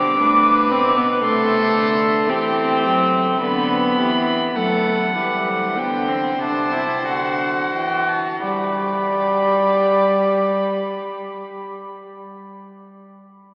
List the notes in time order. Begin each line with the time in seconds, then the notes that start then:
Already playing: D3 C4 G4 D6
0.19 A2 D4 B4
0.70 B2 C4
0.97 B3
1.21 C3 A3 A4 C6
1.75 D3
2.28 E3 C4 G4 G5
2.84 F#3
3.40 D3 B3 B4 B5
3.97 E3 G4
4.55 F#3 A3 A4 F#5
5.15 E3 G3 B4
5.48 C5
5.76 D3 B3 G5
6.08 C4
6.39 C3 D4 A5
6.72 E4
7.05 D3 F#4 F#5
7.73 E3 G5
8.08 A5
8.42 G3 G4 D5 B5